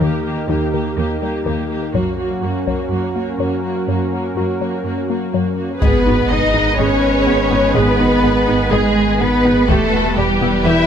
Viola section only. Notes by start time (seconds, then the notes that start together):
0.01 A#3 G4
0.25 A#3 G4
0.49 A#3 G4
0.74 A#3 G4
0.98 A#3 G4
1.21 A#3 G4
1.46 A#3 G4
1.70 A#3 G4
1.94 A#3 F#4
2.19 A#3 F#4
2.42 A#3 F#4
2.67 A#3 F#4
2.92 A#3 F#4
3.16 A#3 F#4
3.39 A#3 F#4
3.64 A#3 F#4
3.88 A#3 F#4
4.13 A#3 F#4
4.36 A#3 F#4
4.61 A#3 F#4
4.85 A#3 F#4
5.09 A#3 F#4
5.33 A#3 F#4
5.57 A#3 F#4
5.81 G#4 B4
6.06 F#4
6.30 G#4
6.54 D#4
6.78 G#4
7.27 G#4
7.51 D#4
7.75 G#4
7.99 F#4
8.23 G#4
8.47 D#4
8.72 G#4
9.20 G#4
9.44 D#4
9.68 G4 B4
9.93 F#4
10.17 G4
10.41 E4
10.66 G4